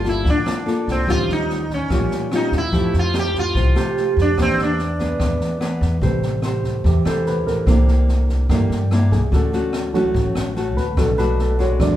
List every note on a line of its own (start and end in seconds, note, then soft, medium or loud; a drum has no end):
0.00 0.21 G1 medium
0.00 0.23 G3 soft
0.04 0.43 A#3 medium
0.04 0.43 F4 medium
0.04 0.43 A4 medium
0.04 kick soft
0.04 snare soft
0.09 0.28 E4 medium
0.24 0.44 D2 medium
0.24 1.05 D3 medium
0.24 kick medium
0.24 snare soft
0.30 0.91 D4 medium
0.46 0.63 A#3 medium
0.46 0.63 F4 medium
0.46 0.64 A4 medium
0.46 cross-stick medium
0.46 snare soft
0.66 1.04 A#3 medium
0.66 1.04 F4 medium
0.66 1.05 A4 medium
0.66 snare soft
0.87 1.08 C2 medium
0.87 kick soft
0.87 snare soft
0.92 1.11 C4 medium
1.07 1.18 D#2 loud
1.07 1.88 D#3 medium
1.07 1.63 G3 medium
1.07 1.63 C#4 medium
1.07 1.63 F4 medium
1.07 1.30 F4 loud
1.07 kick medium
1.07 cross-stick medium
1.07 snare soft
1.28 1.86 D#2 medium
1.28 snare soft
1.33 1.73 D#4 medium
1.49 snare soft
1.70 kick soft
1.70 snare soft
1.74 2.35 C#4 medium
1.90 2.09 A#1 medium
1.90 2.71 A#2 medium
1.90 2.28 G3 medium
1.90 2.28 C#4 medium
1.90 2.29 F4 medium
1.90 kick medium
1.90 cross-stick medium
1.90 snare soft
2.11 snare soft
2.31 2.59 G3 medium
2.31 2.60 C#4 medium
2.31 2.53 D#4 medium
2.31 2.60 F4 medium
2.31 cross-stick medium
2.31 snare soft
2.52 2.72 D#2 medium
2.52 kick soft
2.52 snare soft
2.58 2.94 E4 loud
2.72 2.82 F2 loud
2.72 3.53 F3 soft
2.72 3.10 A3 medium
2.72 3.10 E4 medium
2.72 3.11 G4 medium
2.72 kick medium
2.72 snare soft
2.93 3.51 F2 medium
2.93 snare soft
2.99 3.17 F4 medium
3.14 3.55 A3 soft
3.14 3.55 E4 soft
3.14 3.55 G4 medium
3.14 cross-stick medium
3.14 snare soft
3.19 3.38 G4 medium
3.34 kick soft
3.34 snare soft
3.39 4.22 F4 medium
3.55 3.74 C2 medium
3.55 4.36 C3 soft
3.55 kick medium
3.55 snare soft
3.75 4.34 A3 medium
3.75 4.34 G4 medium
3.75 cross-stick medium
3.75 snare soft
3.97 snare soft
4.17 4.37 F2 medium
4.17 kick soft
4.17 snare soft
4.22 4.40 D4 medium
4.37 4.47 E2 medium
4.37 5.18 E3 medium
4.37 4.78 A#3 soft
4.37 4.79 D4 soft
4.37 4.79 G4 medium
4.37 kick medium
4.37 cross-stick medium
4.37 snare soft
4.42 4.61 C4 loud
4.58 5.16 E2 medium
4.58 snare soft
4.63 5.80 D4 medium
4.78 snare soft
4.99 5.58 B3 medium
4.99 5.58 D4 medium
4.99 5.58 G#4 medium
4.99 kick soft
4.99 snare soft
5.20 5.39 E2 medium
5.20 6.01 E3 soft
5.20 kick medium
5.20 cross-stick medium
5.20 snare soft
5.40 snare soft
5.61 5.99 B3 medium
5.61 5.99 D4 medium
5.61 5.99 G#4 medium
5.61 cross-stick medium
5.61 snare soft
5.81 6.01 E2 medium
5.81 kick soft
5.81 snare soft
6.01 6.80 A1 medium
6.01 7.63 C3 soft
6.01 7.63 G3 soft
6.01 6.82 A3 soft
6.01 6.40 E4 soft
6.01 6.40 G4 soft
6.01 7.26 B4 soft
6.01 6.40 C5 medium
6.01 kick medium
6.01 snare soft
6.22 snare soft
6.42 7.02 E4 soft
6.42 7.02 G4 soft
6.42 7.02 C5 medium
6.42 cross-stick medium
6.42 snare soft
6.64 kick soft
6.64 snare soft
6.84 7.04 E2 medium
6.84 7.65 E3 medium
6.84 7.06 G4 medium
6.84 kick medium
6.84 snare soft
7.05 7.46 E2 medium
7.05 7.64 E4 medium
7.05 7.65 G4 medium
7.05 7.26 A4 medium
7.05 7.65 C5 medium
7.05 cross-stick medium
7.05 snare soft
7.26 7.47 B4 medium
7.26 snare soft
7.46 7.66 A1 medium
7.46 8.46 A#4 medium
7.46 kick soft
7.46 snare soft
7.66 8.45 C2 medium
7.66 8.48 C3 medium
7.66 8.48 D3 soft
7.66 8.48 E3 soft
7.66 8.46 A#3 medium
7.66 8.49 A#3 soft
7.66 8.47 D4 soft
7.66 8.47 E4 medium
7.66 kick medium
7.66 cross-stick medium
7.66 snare soft
7.88 snare soft
8.08 snare soft
8.29 kick soft
8.29 snare soft
8.49 8.69 G2 loud
8.49 8.68 D3 soft
8.49 8.69 E3 soft
8.49 9.30 G3 medium
8.49 8.77 A#3 medium
8.49 8.69 A#3 soft
8.49 8.77 D4 soft
8.49 8.77 E4 soft
8.49 kick medium
8.49 cross-stick medium
8.49 snare soft
8.70 9.13 G2 medium
8.70 snare soft
8.91 9.19 A#3 medium
8.91 9.19 D4 medium
8.91 9.20 E4 medium
8.91 cross-stick medium
8.91 snare soft
9.11 9.31 C2 medium
9.11 9.32 G#4 medium
9.11 kick soft
9.11 snare soft
9.32 10.11 D2 medium
9.32 10.13 D3 medium
9.32 9.50 A3 soft
9.32 9.50 C#4 medium
9.32 9.50 F#4 medium
9.32 9.91 A4 medium
9.32 kick medium
9.32 snare soft
9.53 9.91 A3 medium
9.53 9.91 C#4 medium
9.53 9.92 F#4 medium
9.53 snare soft
9.73 cross-stick medium
9.73 snare soft
9.93 10.21 E3 soft
9.93 10.22 F#3 soft
9.93 10.53 A3 medium
9.93 10.22 C#4 soft
9.93 10.54 C#4 medium
9.93 10.52 F#4 medium
9.93 10.54 F#4 medium
9.93 kick soft
9.93 snare soft
10.14 10.34 A1 medium
10.14 10.96 A2 medium
10.14 kick medium
10.14 snare soft
10.35 10.76 A1 medium
10.35 cross-stick medium
10.35 snare soft
10.56 10.84 A3 medium
10.56 10.84 C#4 medium
10.56 10.85 F#4 medium
10.56 snare soft
10.76 10.96 D2 medium
10.76 10.97 B4 medium
10.76 kick soft
10.76 snare soft
10.97 11.76 B1 loud
10.97 11.78 B2 medium
10.97 11.76 D3 soft
10.97 11.76 A3 soft
10.97 11.10 A3 medium
10.97 11.10 D4 medium
10.97 11.10 F#4 medium
10.97 11.18 A4 medium
10.97 kick medium
10.97 cross-stick medium
10.97 snare soft
11.18 11.56 A3 medium
11.18 11.56 D4 medium
11.18 11.57 F#4 medium
11.18 11.38 B4 medium
11.18 snare soft
11.39 11.59 A4 medium
11.39 snare soft
11.59 11.97 G#3 medium
11.59 11.97 D4 medium
11.59 11.97 F#4 medium
11.59 11.80 C#5 medium
11.59 kick soft
11.59 snare soft
11.79 11.97 E2 medium
11.79 11.97 E3 soft
11.79 11.97 F#3 soft
11.79 11.97 G#3 soft
11.79 11.97 D4 soft
11.79 11.97 D5 medium
11.79 kick medium
11.79 cross-stick medium
11.79 snare soft